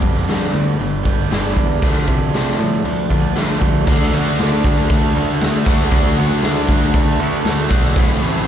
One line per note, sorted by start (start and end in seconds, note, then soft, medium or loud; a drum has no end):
0.00 0.24 F2 medium
0.00 1.03 G2 medium
0.00 0.26 G2 medium
0.00 1.03 D3 medium
0.00 0.26 D3 medium
0.00 1.03 G3 medium
0.00 1.04 B3 medium
0.00 1.04 D4 medium
0.00 1.02 G4 medium
0.00 kick medium
0.00 open hi-hat soft
0.17 snare soft
0.28 0.50 F2 medium
0.28 0.53 G2 medium
0.28 0.53 D3 medium
0.28 0.53 G3 medium
0.28 snare loud
0.28 open hi-hat medium
0.54 0.76 D2 medium
0.54 0.78 G2 medium
0.54 0.78 D3 medium
0.54 open hi-hat medium
0.79 1.02 G1 medium
0.79 1.04 G2 medium
0.79 1.04 D3 medium
0.79 open hi-hat medium
1.03 1.27 G1 medium
1.03 1.29 G2 medium
1.03 1.28 G2 medium
1.03 1.29 D3 medium
1.03 1.30 G3 medium
1.03 1.29 B3 medium
1.03 1.31 D4 medium
1.03 1.29 G4 medium
1.03 kick medium
1.03 open hi-hat soft
1.29 1.53 G1 medium
1.29 1.80 G2 medium
1.29 1.55 G2 medium
1.29 1.80 D3 medium
1.29 1.56 D3 medium
1.29 1.81 G3 medium
1.29 1.56 G3 medium
1.29 1.81 B3 medium
1.29 1.84 D4 medium
1.29 1.82 G4 medium
1.29 snare loud
1.29 open hi-hat medium
1.56 1.79 E2 medium
1.56 1.80 G2 medium
1.56 1.81 D3 medium
1.56 kick medium
1.56 open hi-hat medium
1.82 2.04 D2 medium
1.82 3.09 D3 medium
1.82 2.07 D3 medium
1.82 2.07 F3 medium
1.82 3.10 A3 medium
1.82 2.08 A3 medium
1.82 3.10 D4 medium
1.82 3.09 F4 medium
1.82 kick loud
1.82 open hi-hat medium
2.08 2.30 C3 medium
2.08 2.32 D3 medium
2.08 2.32 F3 medium
2.08 kick medium
2.08 open hi-hat soft
2.34 2.56 C3 medium
2.34 2.58 D3 medium
2.34 2.59 F3 medium
2.34 2.59 A3 medium
2.34 snare loud
2.34 open hi-hat medium
2.59 2.81 A2 medium
2.59 2.83 D3 medium
2.59 2.83 F3 medium
2.59 open hi-hat medium
2.84 3.07 D2 medium
2.84 3.08 D3 medium
2.84 3.08 F3 medium
2.84 open hi-hat medium
3.10 3.32 D2 medium
3.10 3.34 D3 medium
3.10 3.33 D3 medium
3.10 3.34 F3 medium
3.10 3.35 A3 medium
3.10 3.35 D4 medium
3.10 3.34 F4 medium
3.10 kick medium
3.10 open hi-hat soft
3.34 3.58 D2 medium
3.34 3.85 D3 medium
3.34 3.60 D3 medium
3.34 3.61 F3 medium
3.34 3.86 A3 medium
3.34 3.61 A3 medium
3.34 3.87 D4 medium
3.34 3.87 F4 medium
3.34 snare loud
3.34 open hi-hat medium
3.51 snare soft
3.61 3.83 D2 medium
3.61 3.85 D3 medium
3.61 3.85 F3 medium
3.61 kick medium
3.61 open hi-hat soft
3.87 4.12 D2 loud
3.87 5.65 D3 medium
3.87 5.15 D3 medium
3.87 5.67 A3 medium
3.87 5.65 D4 loud
3.87 5.64 F#4 medium
3.87 kick loud
3.87 crash loud
3.87 crash medium
4.13 4.38 D2 loud
4.13 4.64 F#4 medium
4.13 crash medium
4.38 4.64 D2 medium
4.38 5.66 D4 medium
4.38 snare loud
4.38 tambourine loud
4.38 crash medium
4.64 4.89 D2 medium
4.64 5.66 F#4 medium
4.64 kick medium
4.64 crash medium
4.90 5.14 D2 medium
4.90 5.42 A3 medium
4.90 kick loud
4.90 crash medium
5.16 5.40 D2 medium
5.16 5.92 D3 medium
5.16 crash medium
5.41 5.66 D2 loud
5.41 6.96 A3 medium
5.41 snare loud
5.41 tambourine medium
5.41 crash medium
5.65 5.91 D2 medium
5.65 5.89 D3 medium
5.65 5.91 A3 medium
5.65 5.91 D4 medium
5.65 5.90 F#4 medium
5.65 6.17 F#4 medium
5.65 kick medium
5.65 crash medium
5.90 6.16 D2 medium
5.90 7.69 D3 loud
5.90 7.20 D3 medium
5.90 7.71 A3 loud
5.90 7.68 D4 loud
5.90 7.67 F#4 loud
5.90 kick loud
5.90 crash medium
6.17 6.43 D2 medium
6.17 6.68 F#4 medium
6.17 crash medium
6.42 6.68 D2 medium
6.42 7.72 D4 medium
6.42 snare loud
6.42 tambourine medium
6.42 crash medium
6.69 6.93 D2 medium
6.69 7.69 F#4 medium
6.69 kick medium
6.69 crash medium
6.93 7.18 D2 medium
6.93 7.46 A3 medium
6.93 kick loud
6.93 crash medium
7.20 7.44 D2 loud
7.20 7.97 D3 medium
7.20 crash medium
7.45 7.70 D2 loud
7.45 8.47 A3 medium
7.45 snare loud
7.45 tambourine medium
7.45 crash medium
7.68 7.95 B1 medium
7.68 7.96 D3 medium
7.68 7.96 A3 medium
7.68 7.94 D4 medium
7.68 7.94 F#4 medium
7.68 7.96 F#4 medium
7.68 kick medium
7.68 crash medium
7.95 8.21 A1 loud
7.95 8.47 A2 medium
7.95 8.47 E3 medium
7.95 8.47 A3 loud
7.95 8.47 C4 loud
7.95 8.47 E4 loud
7.95 kick loud
7.95 crash medium
8.22 8.46 A1 loud
8.22 8.47 E4 medium
8.22 crash medium